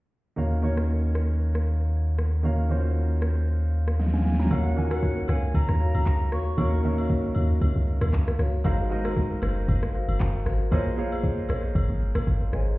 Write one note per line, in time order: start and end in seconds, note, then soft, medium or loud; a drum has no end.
0.36 4.47 D#2 medium
0.36 0.58 D#3 medium
0.36 0.58 A#3 medium
0.36 0.59 C#4 medium
0.36 0.59 F#4 medium
0.36 0.59 F5 medium
0.36 shaker medium
0.52 shaker soft
0.62 1.46 D#3 medium
0.62 1.46 A#3 medium
0.62 1.46 C#4 medium
0.62 1.47 F#4 medium
0.62 1.47 C#5 medium
0.62 shaker medium
0.77 cross-stick medium
0.77 shaker medium
0.89 shaker medium
1.03 shaker medium
1.15 cross-stick medium
1.15 shaker medium
1.30 shaker soft
1.41 shaker medium
1.55 cross-stick medium
1.55 shaker soft
1.66 shaker medium
1.93 shaker medium
2.07 shaker medium
2.18 cross-stick medium
2.18 shaker medium
2.32 shaker soft
2.43 2.65 D#3 medium
2.43 2.65 A#3 medium
2.43 2.65 C#4 medium
2.43 2.66 F#4 medium
2.43 2.66 F5 medium
2.43 shaker medium
2.59 shaker soft
2.69 3.53 D#3 medium
2.69 3.53 A#3 medium
2.69 3.53 C#4 medium
2.69 2.77 F4 medium
2.69 3.54 C5 medium
2.69 shaker medium
2.77 3.57 F#4 medium
2.84 shaker medium
2.96 shaker medium
3.10 shaker medium
3.22 cross-stick medium
3.22 shaker medium
3.36 shaker soft
3.48 shaker medium
3.62 shaker soft
3.73 shaker medium
3.88 cross-stick medium
3.99 4.13 D#5 medium
3.99 4.13 F#5 medium
3.99 snare soft
3.99 shaker medium
4.07 snare soft
4.13 4.39 F5 medium
4.13 4.38 G#5 medium
4.13 snare medium
4.13 shaker medium
4.19 snare medium
4.25 4.54 G#5 medium
4.25 snare medium
4.25 shaker medium
4.32 snare medium
4.39 4.64 F#5 medium
4.39 4.64 A#5 medium
4.39 snare medium
4.39 shaker soft
4.45 snare medium
4.50 5.25 D#2 loud
4.50 4.72 D#3 medium
4.50 4.72 A#3 medium
4.50 4.72 C#4 medium
4.50 4.88 F#4 medium
4.50 4.73 F#4 medium
4.50 4.88 C#5 medium
4.50 4.73 F5 medium
4.50 4.88 F#5 loud
4.50 4.92 F#5 loud
4.50 kick loud
4.50 high agogo medium
4.50 shaker medium
4.65 shaker medium
4.76 5.60 D#3 medium
4.76 5.60 A#3 medium
4.76 5.60 C#4 medium
4.76 4.84 F4 medium
4.76 5.61 G#5 medium
4.76 shaker medium
4.84 5.64 F#4 medium
4.91 5.03 F#4 medium
4.91 5.04 C#5 medium
4.91 5.04 F5 medium
4.91 5.31 F#5 medium
4.91 cross-stick loud
4.91 high agogo medium
4.91 shaker medium
5.03 kick medium
5.03 shaker medium
5.17 shaker medium
5.28 5.53 C#2 loud
5.28 5.43 F#4 medium
5.28 5.44 C#5 medium
5.28 5.44 F5 medium
5.28 5.57 G#5 loud
5.28 cross-stick loud
5.28 high agogo medium
5.28 shaker medium
5.43 shaker medium
5.54 5.68 C#2 loud
5.54 6.33 A#5 loud
5.54 kick loud
5.54 high agogo medium
5.54 shaker medium
5.69 5.93 D#2 medium
5.69 cross-stick medium
5.69 shaker medium
5.80 5.95 F#4 medium
5.80 5.95 C#5 medium
5.80 5.95 F5 medium
5.80 shaker loud
5.95 6.05 C#2 medium
5.95 high agogo medium
6.06 6.34 C#2 loud
6.06 kick medium
6.06 clap medium
6.06 shaker medium
6.20 shaker medium
6.32 6.56 D#2 medium
6.32 6.47 F#4 medium
6.32 6.47 C#5 medium
6.32 6.47 F5 medium
6.32 7.32 C#6 loud
6.32 cross-stick medium
6.32 open hi-hat medium
6.32 shaker medium
6.46 shaker medium
6.57 7.32 D#2 loud
6.57 6.79 D#3 medium
6.57 6.79 A#3 medium
6.57 6.79 C#4 medium
6.57 6.95 F#4 loud
6.57 6.80 F#4 medium
6.57 6.80 A#4 medium
6.57 6.95 C#5 medium
6.57 6.95 F5 loud
6.57 kick loud
6.57 high agogo medium
6.57 shaker medium
6.72 shaker soft
6.83 7.67 D#3 medium
6.83 7.67 A#3 medium
6.83 7.67 C#4 medium
6.83 7.67 F#4 medium
6.83 6.91 E5 medium
6.83 shaker loud
6.91 7.71 F5 medium
6.98 7.10 F#4 medium
6.98 7.10 C#5 medium
6.98 7.11 F5 medium
6.98 high agogo medium
6.98 shaker medium
7.10 kick medium
7.10 shaker medium
7.24 shaker medium
7.35 7.60 D#2 medium
7.35 7.50 F#4 medium
7.35 7.50 C#5 medium
7.35 7.51 F5 medium
7.35 high agogo medium
7.35 shaker medium
7.50 shaker medium
7.61 7.75 C#2 loud
7.61 kick loud
7.61 high agogo medium
7.61 shaker medium
7.76 8.00 C#2 medium
7.76 shaker medium
7.87 shaker medium
8.01 8.12 D#2 loud
8.01 cross-stick loud
8.01 high agogo medium
8.13 8.37 C#2 medium
8.13 kick medium
8.13 clap medium
8.13 shaker medium
8.27 cross-stick loud
8.27 shaker medium
8.39 8.63 C#2 medium
8.39 8.63 F#4 medium
8.39 8.63 C#5 medium
8.39 8.63 F5 medium
8.39 cross-stick medium
8.39 open hi-hat medium
8.39 shaker medium
8.53 shaker medium
8.64 9.39 G#1 loud
8.64 8.86 G#3 medium
8.64 8.86 D#4 medium
8.64 9.01 F#4 medium
8.64 8.86 F#4 medium
8.64 9.02 A#4 medium
8.64 8.86 A#4 medium
8.64 9.02 C5 medium
8.64 8.87 C5 medium
8.64 9.02 F5 loud
8.64 8.87 F5 loud
8.64 kick loud
8.64 high agogo medium
8.64 shaker medium
8.79 shaker medium
8.90 9.74 G#3 medium
8.90 9.74 D#4 medium
8.90 9.74 F#4 medium
8.90 9.74 A#4 medium
8.90 9.74 C5 medium
8.90 9.75 D#5 loud
8.90 shaker loud
9.05 9.17 F#4 medium
9.05 9.17 A#4 medium
9.05 9.17 C5 medium
9.05 9.17 F5 medium
9.05 cross-stick loud
9.05 high agogo medium
9.05 shaker medium
9.17 kick medium
9.17 shaker medium
9.31 shaker medium
9.42 9.66 F#1 medium
9.42 9.57 F#4 medium
9.42 9.57 A#4 medium
9.42 9.57 C5 medium
9.42 9.57 F5 medium
9.42 cross-stick loud
9.42 high agogo medium
9.42 shaker loud
9.57 shaker medium
9.68 9.84 F#1 loud
9.68 kick loud
9.68 high agogo medium
9.68 shaker medium
9.83 10.06 G#1 medium
9.83 cross-stick medium
9.83 shaker medium
9.94 10.09 F#4 medium
9.94 10.09 A#4 medium
9.94 10.09 C5 medium
9.94 10.09 F5 medium
9.94 shaker medium
10.08 10.19 F#1 medium
10.08 high agogo medium
10.20 10.44 F#1 medium
10.20 kick medium
10.20 clap medium
10.20 shaker medium
10.34 shaker medium
10.46 10.70 G#1 medium
10.46 10.61 F#4 medium
10.46 10.61 A#4 medium
10.46 10.61 C5 medium
10.46 10.61 F5 medium
10.46 cross-stick medium
10.46 open hi-hat medium
10.46 shaker loud
10.60 shaker medium
10.71 11.46 A#1 loud
10.71 10.93 A#3 medium
10.71 10.93 F4 medium
10.71 11.08 G#4 loud
10.71 10.93 G#4 medium
10.71 11.09 C5 medium
10.71 10.93 C5 medium
10.71 11.09 C#5 medium
10.71 10.93 C#5 medium
10.71 11.09 D#5 loud
10.71 10.94 D#5 loud
10.71 kick loud
10.71 high agogo medium
10.71 shaker medium
10.86 shaker medium
10.97 11.81 A#3 medium
10.97 11.81 F4 medium
10.97 11.81 G#4 medium
10.97 11.81 C5 medium
10.97 11.81 C#5 medium
10.97 11.82 F5 loud
10.97 shaker loud
11.12 11.24 G#4 medium
11.12 11.24 C5 medium
11.12 11.24 C#5 medium
11.12 11.24 D#5 medium
11.12 high agogo medium
11.12 shaker medium
11.24 kick medium
11.24 shaker medium
11.38 shaker medium
11.49 11.73 A#1 medium
11.49 11.64 G#4 medium
11.49 11.64 C5 medium
11.49 11.64 C#5 medium
11.49 11.64 D#5 medium
11.49 cross-stick loud
11.49 high agogo medium
11.49 shaker loud
11.64 shaker medium
11.75 11.88 G#1 loud
11.75 kick loud
11.75 high agogo medium
11.75 shaker medium
11.90 12.13 G#1 medium
11.90 shaker medium
12.01 shaker loud
12.15 12.26 A#1 loud
12.15 cross-stick loud
12.15 high agogo medium
12.27 12.51 G#1 medium
12.27 kick medium
12.27 shaker medium
12.41 shaker medium
12.53 12.77 G#1 loud
12.53 12.77 G#4 medium
12.53 12.77 C5 medium
12.53 12.77 C#5 medium
12.53 12.77 D#5 medium
12.53 12.60 G#5 medium
12.53 cross-stick medium
12.53 shaker loud
12.67 shaker medium